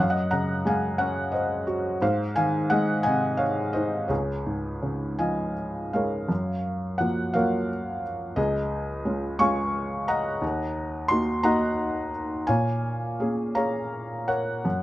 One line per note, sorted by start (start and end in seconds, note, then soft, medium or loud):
0.00 1.98 F#2 medium
0.00 0.10 F5 medium
0.10 0.30 D#5 medium
0.10 0.29 F#5 medium
0.31 1.64 C#3 soft
0.31 0.63 F#5 medium
0.31 0.67 A#5 medium
0.65 1.97 G#3 soft
0.65 0.98 F5 medium
0.65 1.01 G#5 medium
0.98 1.98 C#4 medium
0.98 1.31 C#5 medium
0.98 1.31 F#5 medium
1.32 1.65 C5 soft
1.32 1.64 D#5 medium
1.67 2.00 F#4 medium
2.02 4.06 G#2 medium
2.02 2.34 C5 medium
2.02 2.34 F5 medium
2.36 3.71 D#3 soft
2.36 2.68 F5 medium
2.36 2.71 G#5 medium
2.70 4.06 G#3 soft
2.70 3.02 D#5 medium
2.70 3.02 F#5 medium
3.03 4.07 C3 soft
3.03 3.37 D#5 medium
3.03 3.40 G#5 medium
3.37 3.72 C#5 medium
3.37 3.71 F5 medium
3.73 4.09 D#4 medium
3.73 4.07 C5 soft
3.73 4.10 D#5 medium
4.08 6.26 C#2 medium
4.08 5.53 G#4 soft
4.08 5.52 C#5 medium
4.46 5.91 G#2 soft
4.82 6.27 C#3 soft
5.19 6.27 F3 soft
5.19 6.26 D#5 soft
5.19 5.92 F5 soft
5.19 5.90 G#5 medium
5.93 6.29 G#3 soft
5.93 6.97 A#4 soft
5.93 6.98 C#5 soft
5.93 7.04 F5 medium
6.29 8.33 F#2 soft
6.98 7.67 F3 soft
6.98 7.33 F#3 soft
6.98 7.34 A#3 soft
6.98 7.35 F#5 medium
7.34 8.01 F#3 soft
7.34 8.02 A#3 soft
7.34 8.02 F4 soft
7.34 8.34 A#4 medium
7.34 8.34 C#5 medium
7.34 8.40 F5 medium
8.36 10.37 C#2 medium
8.36 9.36 G#4 medium
8.36 9.43 D#5 medium
9.05 9.38 G#3 soft
9.05 9.38 C#4 soft
9.05 9.39 F4 soft
9.39 10.06 G#3 soft
9.39 10.06 C#4 soft
9.39 10.07 F4 soft
9.39 10.38 F5 medium
9.39 10.38 G#5 medium
9.39 10.04 C#6 medium
10.08 11.05 D#5 medium
10.08 11.05 F#5 medium
10.08 11.05 A#5 medium
10.41 12.44 D#2 medium
11.08 11.42 A#3 soft
11.08 11.42 D#4 soft
11.08 11.42 F#4 medium
11.08 11.40 C6 medium
11.43 12.11 A#3 soft
11.43 12.11 D#4 soft
11.43 12.11 F#4 soft
11.43 12.44 D#5 medium
11.43 12.44 F#5 medium
11.43 12.51 A#5 medium
12.47 14.61 A#2 medium
12.47 13.52 C#5 medium
12.47 13.51 F5 medium
12.47 13.58 G#5 medium
13.19 13.54 A#3 soft
13.19 13.55 C#4 soft
13.19 13.55 G#4 soft
13.55 14.26 A#3 soft
13.55 14.26 C#4 soft
13.55 14.26 G#4 soft
13.55 14.26 C#5 medium
13.55 14.61 F5 medium
13.55 14.30 A#5 medium
14.28 14.83 A#4 soft
14.28 14.83 C#5 soft
14.28 14.83 F#5 medium
14.65 14.83 F#2 soft